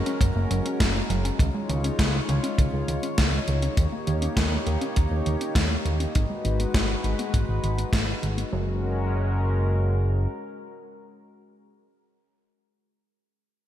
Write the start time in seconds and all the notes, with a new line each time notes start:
Already playing: G#3 C#4 F#4 A#4
0.06 C#4, closed hi-hat
0.21 F#1 F#3, kick, closed hi-hat
0.36 F#1 A#3
0.51 F#1 F#3, closed hi-hat
0.66 C#4, closed hi-hat
0.80 F#1 F#3, kick, snare, closed hi-hat
0.95 A#3
1.10 F#1 F#3, closed hi-hat
1.25 C#4, closed hi-hat
1.39 C#2 D#3 D#4 F4 C#5, kick, closed hi-hat
1.54 G#3
1.69 C#2 D#3, closed hi-hat
1.84 C#4, closed hi-hat
1.99 C#2 D#3, kick, snare, closed hi-hat
2.14 G#3
2.29 C#2 D#3, closed hi-hat
2.43 C#4, closed hi-hat
2.58 C#2 D#3, kick, closed hi-hat
2.73 C#2 G#3
2.88 C#2 D#3, closed hi-hat
3.03 C#4, closed hi-hat
3.18 C#2 D#3, kick, snare, closed hi-hat
3.33 G#3
3.48 C#2 D#3, closed hi-hat
3.62 C#4, closed hi-hat
3.77 D#2 D#3 A#3 G4, kick, closed hi-hat
3.92 A#3
4.07 D#2 D#3, closed hi-hat
4.22 C#4, closed hi-hat
4.37 D#2 D#3, kick, snare, closed hi-hat
4.52 A#3
4.67 D#2 D#3, closed hi-hat
4.81 C#4, closed hi-hat
4.96 D#2 D#3, kick, closed hi-hat
5.11 D#2 A#3
5.26 D#2 D#3, closed hi-hat
5.41 C#4, closed hi-hat
5.55 D#2 D#3, kick, snare, closed hi-hat
5.71 A#3
5.85 D#2 D#3, closed hi-hat
6.00 C#4, closed hi-hat
6.15 G#1 D#3 G#3 F#4 B4, kick, closed hi-hat
6.30 G#3
6.45 G#1 D#3, closed hi-hat
6.60 B3, closed hi-hat
6.74 G#1 D#3, kick, snare, closed hi-hat
6.89 G#3
7.04 G#1 D#3, closed hi-hat
7.19 B3, closed hi-hat
7.34 G#1 D#3, kick, closed hi-hat
7.49 G#1 G#3
7.63 G#1 D#3, closed hi-hat
7.78 B3, closed hi-hat
7.93 G#1 D#3, kick, snare, closed hi-hat
8.08 G#3
8.23 G#1 D#3, closed hi-hat
8.37 B3, closed hi-hat
8.52 F#1 F#3 G#3 C#4 F#4 A#4